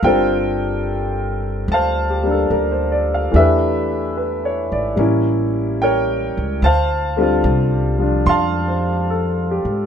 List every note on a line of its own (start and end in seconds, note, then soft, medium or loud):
0.00 1.64 G1 medium
0.00 3.34 D3 soft
0.00 0.84 A4 medium
0.04 2.22 G3 soft
0.04 3.34 C4 soft
0.04 3.34 F4 medium
0.04 1.66 A#4 medium
0.04 1.66 C5 medium
0.04 1.39 G5 medium
1.68 2.47 D2 medium
1.68 3.31 A5 medium
1.74 2.70 C5 medium
1.74 3.13 F5 medium
2.10 2.35 G4 soft
2.23 3.33 G3 soft
2.23 3.34 A#3 soft
2.23 3.33 D4 soft
2.31 2.59 A4 soft
2.50 3.29 D2 medium
2.50 2.90 A#4 soft
2.71 3.07 C5 soft
2.92 3.17 D5 soft
3.14 3.42 F5 soft
3.31 4.68 E2 medium
3.31 4.97 E3 soft
3.31 4.98 A3 soft
3.31 4.99 D4 soft
3.31 4.99 G4 soft
3.36 4.16 B4 soft
3.36 4.95 E5 medium
4.17 4.69 B4 soft
4.45 4.87 C#5 soft
4.72 4.96 G#1 medium
4.72 5.15 D5 soft
4.96 6.32 A1 medium
4.96 6.61 G3 soft
4.96 6.62 A#3 soft
4.96 6.63 C#4 soft
5.00 6.64 E4 soft
5.82 6.60 A#4 medium
5.82 6.60 C#5 medium
5.82 6.66 G5 medium
6.37 6.61 C#2 medium
6.62 7.41 D2 medium
6.62 8.24 C5 medium
6.62 8.25 F5 medium
6.62 7.98 A5 medium
7.17 9.86 D3 medium
7.17 7.97 G3 medium
7.17 9.86 C4 soft
7.22 9.86 F4 soft
7.44 8.23 C2 medium
7.99 9.86 F3 soft
7.99 9.86 G3 soft
7.99 9.86 D4 soft
8.26 9.61 F2 medium
8.26 9.86 F5 medium
8.26 9.86 A5 medium
8.26 9.83 C6 medium
8.68 9.26 C5 soft
9.10 9.75 A4 soft
9.51 9.86 G4 soft
9.65 9.86 G#2 medium